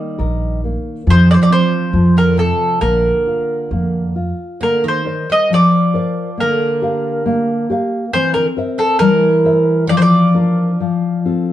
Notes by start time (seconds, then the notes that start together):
Already playing: D#3 G3 A#3 D#5
0.18 A#1 A#4
0.64 A#3
1.07 F2 F3 C5
1.11 D#3
1.31 D#3 F3 C5 D5
1.42 F3 D5
1.50 F3 C4 C5
1.93 F2 F3
2.17 D3 A#4
2.37 C3 C4 A4
2.80 A#1 D3 A#3 A#4
3.27 F4
3.71 F2 A#3
4.16 F4
4.61 D3 A#3 A#4
4.84 D#3
4.88 C5
5.05 A#4 C5 D5
5.30 G3 D#5
5.50 F3 D5
5.94 A#4 C5 D5
6.38 D3 A#3 A#4
6.82 G4 A#4 F5
7.26 A#3
7.70 G4 A#4 F5
8.13 E3 C4 C5
8.34 D3 A#4
8.57 A#4 C5 E5
8.78 C3 A4
8.99 E3 G3 A#4
9.45 A#4 C5 E5
9.87 F3 D5
9.97 D#3 C5
10.01 F3 D5
10.34 D4 F4 A#4
10.80 F3
11.25 C4 F4 A4